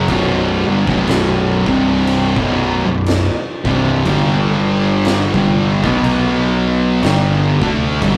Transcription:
0.08 B0 B1 F#2 B2, kick, crash
0.66 G1 G2 D3
0.86 B0 B1 F#2 B2, kick
1.07 snare, crash
1.66 C1 C2 G2 C3, kick
2.07 crash
2.36 B0 B1 F#2 B2, kick
2.85 B0 B1 F#2
3.06 snare, crash
3.64 C1 C2 G2 C3, kick
4.05 G1 G2 D3 G3, kick, crash
5.05 snare, crash
5.33 G1 G2 D3 G3, kick
5.83 B1 B2 F#3 B3, kick
6.04 crash
7.02 G1 G2 D3 G3, snare, crash
7.61 D2 D3 A3 D4, kick
8.01 G1 G2 D3 G3, kick, crash

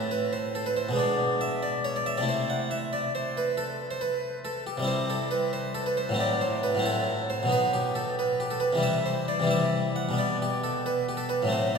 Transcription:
Already playing: A2 A3 C4 E4 A4
0.11 B4
0.33 C5
0.55 A4
0.66 B4
0.77 C5
0.89 B2 G#3
0.93 B3 D4
0.99 D5
1.41 E5
1.63 D5
1.85 C#5
1.96 D5
2.06 E5
2.17 C3 A3 D5
2.23 E4
2.29 C5
2.50 F#5
2.71 E5
2.93 D5
3.15 C5
3.37 B4
3.57 A4
3.91 C5
4.01 B4
4.45 A4
4.67 G4
4.77 C3 G3
4.82 C4 E4
4.87 C5
5.10 A4
5.31 B4
5.53 C5
5.75 A4
5.86 B4
5.97 C5
6.09 A2 F#3
6.14 C4 E4
6.20 D5
6.41 C5
6.63 B4
6.75 A2 F#3
6.79 C4 E4
6.85 A4
7.30 C5
7.43 B2 F#3
7.47 B3 D#4
7.52 B4
7.74 G4
7.95 A4
8.19 B4
8.40 G4
8.51 A4
8.60 B4
8.73 C3 E3
8.77 G3 E4
8.83 E5
9.06 C5
9.28 D5
9.40 C3 E3
9.44 G3 E4
9.51 E5
9.96 F#5
10.09 B2 G3
10.13 B3
10.18 D5
10.42 G4
10.64 A4
10.86 B4
11.09 G4
11.17 A4
11.29 B4
11.42 A2 F#3
11.47 A3 C4
11.52 C5

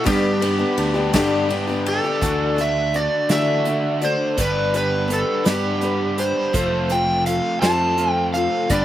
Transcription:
0.04 G2 D3 G3 B3 D4 G4, kick, ride, tambourine
0.40 G3 B3 D4 G4, ride, tambourine
0.58 G3 B3 D4 G4
0.78 D2 D4, ride, tambourine
0.94 G3 B3 D4 G4
1.13 G2 D3 G3 B3 D4 G4, kick, snare, ride, tambourine
1.49 G3 B3 D4 G4, ride, tambourine
1.67 G3 B3 D4 G4, tambourine
1.86 G4 A4, ride
2.04 G3 B3 D4 G4
2.21 D2 D3 E3 A3 D4 F#4 A4 D5, kick, closed hi-hat
2.56 A3 D4 F#4 D5, closed hi-hat
2.61 E5
2.93 A3 D4 F#4 D5, closed hi-hat
3.29 D3 E3 A3 D4 F#4 A4 D5 E5, snare, closed hi-hat
3.65 A3 D4 F#4 D5, closed hi-hat
4.01 A3 D4 F#4 C5 D5, closed hi-hat
4.37 G1 G2 G3 B3 D4 G4 B4, kick, closed hi-hat
4.73 B3 D4 G4 B4, closed hi-hat
5.08 B3 D4 G4 B4, closed hi-hat
5.13 A4
5.44 G2 G3 B3 D4 G4 B4, snare, closed hi-hat
5.81 B3 D4 G4 B4, closed hi-hat
6.18 D4 G4 C5, closed hi-hat
6.53 F1 F3 A3 C4 F4 A4 C5, kick, closed hi-hat
6.89 F4 A4 C5 G5, closed hi-hat
7.25 F3 F4 A4 C5 F5, closed hi-hat
7.62 F2 F3 A3 C4 F4 A4 C5 A5, snare, closed hi-hat
7.97 F3 F4 A4 C5, closed hi-hat
8.12 G5
8.33 F4 A4 C5 F5, closed hi-hat
8.70 G1 G2 G3 B3 D4 G4 B4 D5, kick, closed hi-hat

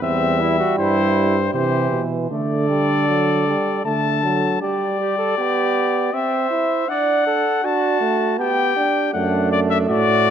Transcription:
0.02 E2 G3 C4 E5
0.41 E4
0.59 F#4
0.78 G2 E4 C5
1.53 C3 E3 G4 C5
1.92 B2
2.30 D3 A3 A4 D5
2.69 G3
3.08 F#3
3.46 G3
3.85 D3 A3 A4 A5
4.23 F#3
4.61 G3 G4 D5
5.00 G4
5.18 A4
5.38 B3 G4
6.13 C4 C5 E5
6.50 E4
6.88 D4 D5 F#5
7.26 A4
7.64 D4 F#4 A5
8.00 A3
8.38 B3 G4 G5
8.76 D4
9.13 F#2 A3 D4 F#5
9.52 D5
9.70 E5
9.88 A2 F#4 D5

